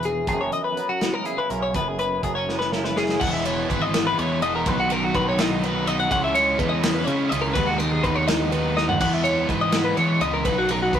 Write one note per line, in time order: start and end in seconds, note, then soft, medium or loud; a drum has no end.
0.00 0.28 E1 medium
0.00 0.76 E3 medium
0.00 0.30 C#4 medium
0.00 0.33 G#4 medium
0.00 closed hi-hat medium
0.05 0.29 E2 medium
0.05 0.28 G#4 medium
0.27 0.50 F#1 medium
0.27 1.72 F#2 medium
0.27 0.77 B3 medium
0.27 0.41 G#4 medium
0.27 kick loud
0.27 closed hi-hat medium
0.41 0.53 C#5 medium
0.52 0.64 D#5 medium
0.52 closed hi-hat medium
0.64 0.89 B4 medium
0.77 1.71 F#3 medium
0.77 0.89 B3 medium
0.77 closed hi-hat medium
0.89 1.49 C#4 medium
0.89 1.14 F#4 medium
1.01 1.76 B3 medium
1.01 snare loud
1.01 closed hi-hat medium
1.14 1.26 A#4 medium
1.24 1.71 C#3 medium
1.24 2.71 E4 medium
1.24 1.38 G#4 medium
1.24 closed hi-hat medium
1.38 1.50 B4 medium
1.50 1.72 B1 medium
1.50 1.72 C#4 medium
1.50 1.62 A#4 medium
1.50 closed hi-hat medium
1.63 1.74 C#5 medium
1.74 2.19 F#1 loud
1.74 3.18 F#2 medium
1.74 2.23 B3 medium
1.74 1.88 B4 medium
1.74 kick loud
1.74 closed hi-hat medium
1.88 1.99 G#4 medium
1.99 2.23 B4 medium
1.99 closed hi-hat medium
2.23 3.16 F#1 medium
2.23 3.18 F#3 medium
2.23 2.36 B3 medium
2.23 2.35 G#4 medium
2.23 kick medium
2.23 closed hi-hat medium
2.35 2.96 C#4 soft
2.35 2.58 C#5 medium
2.49 3.18 B3 medium
2.49 snare medium
2.59 2.72 B4 medium
2.59 snare medium
2.72 3.17 C#3 medium
2.72 4.66 E4 medium
2.72 2.84 A#4 medium
2.72 snare medium
2.84 2.96 B4 medium
2.84 snare medium
2.96 3.18 C#4 medium
2.96 3.21 G#4 medium
2.96 snare medium
3.09 snare medium
3.20 3.65 E1 loud
3.20 3.67 E3 medium
3.20 3.47 G#3 loud
3.20 3.46 B3 medium
3.20 3.43 E4 loud
3.20 3.33 F#5 medium
3.20 kick loud
3.20 crash loud
3.33 3.45 E5 medium
3.44 3.68 G#3 medium
3.44 3.70 B3 medium
3.44 3.70 E4 medium
3.44 3.69 C#5 medium
3.44 ride medium
3.68 4.14 G#1 medium
3.68 4.16 E3 medium
3.68 3.96 G#3 medium
3.68 3.95 B3 medium
3.68 3.93 E4 medium
3.68 3.82 B4 medium
3.68 kick medium
3.68 ride medium
3.82 4.05 D#5 medium
3.94 4.17 G#3 medium
3.94 4.19 B3 medium
3.94 4.20 E4 medium
3.94 snare loud
3.94 ride loud
4.07 4.18 B4 medium
4.18 4.40 E2 medium
4.18 4.64 E3 medium
4.18 4.44 G#3 medium
4.18 4.43 B3 medium
4.18 4.40 E4 medium
4.18 4.42 C#5 medium
4.18 ride medium
4.42 4.64 E1 medium
4.42 4.66 G#3 medium
4.42 4.67 B3 medium
4.42 4.64 E4 medium
4.42 4.54 D#5 medium
4.42 ride medium
4.56 4.68 A#4 medium
4.65 5.10 B1 loud
4.65 5.14 B2 medium
4.65 5.13 D#3 loud
4.65 4.92 F#3 loud
4.65 4.91 B3 loud
4.65 4.89 D#4 loud
4.65 4.79 B4 medium
4.65 kick loud
4.65 ride loud
4.80 4.92 F#4 medium
4.89 5.14 F#3 medium
4.89 5.16 B3 medium
4.89 5.17 D#4 medium
4.89 5.04 A#4 medium
4.89 ride medium
5.04 5.15 F#4 medium
5.14 6.07 B1 medium
5.14 5.61 D#3 medium
5.14 5.41 F#3 medium
5.14 5.40 B3 medium
5.14 5.38 D#4 medium
5.14 5.27 B4 medium
5.14 kick medium
5.14 ride medium
5.29 5.40 C#5 medium
5.39 5.62 F#3 medium
5.39 5.64 B3 medium
5.39 5.65 D#4 medium
5.39 5.64 D#5 medium
5.39 snare loud
5.39 ride loud
5.62 6.09 D#3 medium
5.62 5.89 F#3 medium
5.62 5.88 B3 medium
5.62 5.86 D#4 medium
5.62 5.87 B4 medium
5.62 ride medium
5.86 6.11 F#3 medium
5.86 6.12 B3 medium
5.86 6.12 D#4 medium
5.86 5.99 D#5 medium
5.86 ride medium
6.00 6.11 F#5 medium
6.09 6.55 C#2 loud
6.09 6.57 C#3 medium
6.09 6.37 G#3 loud
6.09 6.35 C#4 loud
6.09 6.33 E4 loud
6.09 6.23 F#5 medium
6.09 kick loud
6.09 ride loud
6.24 6.35 E5 medium
6.34 6.59 G#3 medium
6.34 6.59 C#4 medium
6.34 6.59 E4 medium
6.34 6.59 C#5 medium
6.34 ride medium
6.58 7.03 E2 medium
6.58 7.05 C#3 medium
6.58 6.85 G#3 medium
6.58 6.82 C#4 medium
6.58 6.80 E4 medium
6.58 6.71 B4 medium
6.58 kick medium
6.58 ride medium
6.69 6.94 D#5 medium
6.82 7.08 G#3 medium
6.82 7.07 C#4 medium
6.82 7.09 E4 medium
6.82 snare loud
6.82 ride loud
6.94 7.04 B4 medium
7.04 7.54 C#3 medium
7.04 7.29 C#3 medium
7.04 7.33 G#3 medium
7.04 7.29 C#5 medium
7.04 ride medium
7.09 7.30 C#4 medium
7.09 7.29 E4 medium
7.29 7.54 C#2 loud
7.29 7.54 C#4 medium
7.29 7.53 E4 medium
7.29 7.42 D#5 medium
7.29 ride medium
7.34 7.55 G#3 medium
7.42 7.55 A#4 medium
7.54 8.00 D#2 loud
7.54 8.01 D#3 medium
7.54 7.83 G#3 loud
7.54 7.81 B3 loud
7.54 7.67 B4 loud
7.54 kick loud
7.54 ride loud
7.58 7.79 D#4 loud
7.67 7.78 F#4 medium
7.78 8.05 B3 medium
7.78 8.06 D#4 medium
7.78 7.91 A#4 medium
7.78 ride medium
7.83 8.03 G#3 medium
7.91 8.03 G#4 medium
8.02 8.97 D#2 medium
8.02 8.50 D#3 medium
8.02 8.30 G#3 medium
8.02 8.28 B3 medium
8.02 8.26 D#4 medium
8.02 8.16 B4 medium
8.02 kick medium
8.02 ride medium
8.16 8.27 C#5 medium
8.27 8.53 B3 medium
8.27 8.54 D#4 medium
8.27 8.52 D#5 medium
8.27 snare loud
8.27 ride loud
8.31 8.51 G#3 medium
8.51 8.98 D#3 medium
8.51 8.79 G#3 medium
8.51 8.78 B3 medium
8.51 8.75 D#4 medium
8.51 8.76 B4 medium
8.51 ride medium
8.76 9.02 B3 medium
8.76 9.03 D#4 medium
8.76 8.88 D#5 medium
8.76 snare medium
8.80 9.00 G#3 medium
8.89 9.00 F#5 medium
8.89 floor tom loud
9.00 9.45 E2 loud
9.00 9.48 E3 medium
9.00 9.26 G#3 medium
9.00 9.26 B3 medium
9.00 9.14 F#5 medium
9.00 kick loud
9.00 crash loud
9.00 ride loud
9.04 9.23 E4 loud
9.14 9.25 E5 medium
9.24 9.50 G#3 medium
9.24 9.51 B3 medium
9.24 9.52 E4 medium
9.24 9.48 C#5 medium
9.24 ride medium
9.48 9.93 G#2 medium
9.48 9.97 E3 medium
9.48 9.76 G#3 medium
9.48 9.75 B3 medium
9.48 9.61 B4 medium
9.48 kick medium
9.48 ride medium
9.53 9.73 E4 medium
9.61 9.85 D#5 medium
9.72 10.01 B3 medium
9.72 10.01 E4 medium
9.72 snare loud
9.72 ride loud
9.77 9.99 G#3 medium
9.85 9.97 B4 medium
9.97 10.19 E3 medium
9.97 10.44 E3 medium
9.97 10.25 G#3 medium
9.97 10.21 C#5 medium
9.97 ride medium
10.01 10.24 B3 medium
10.01 10.21 E4 medium
10.21 10.43 C#2 loud
10.21 10.48 B3 medium
10.21 10.44 E4 medium
10.21 10.33 D#5 medium
10.21 ride medium
10.26 10.46 G#3 medium
10.34 10.45 A#4 medium
10.45 10.89 B1 loud
10.45 10.93 B2 loud
10.45 10.91 D#3 loud
10.45 10.72 F#3 loud
10.45 10.71 B3 loud
10.45 10.69 D#4 loud
10.45 10.57 B4 medium
10.45 kick loud
10.45 ride loud
10.58 10.71 F#4 medium
10.69 10.94 B3 medium
10.69 10.95 D#4 medium
10.69 10.82 A#4 medium
10.69 ride medium
10.73 10.92 F#3 medium
10.83 10.94 F#4 medium
10.92 10.99 B1 medium
10.92 10.99 D#3 medium
10.92 10.99 F#3 medium
10.92 10.99 B3 medium
10.92 10.99 D#4 medium
10.92 10.99 B4 medium
10.92 kick medium
10.92 ride medium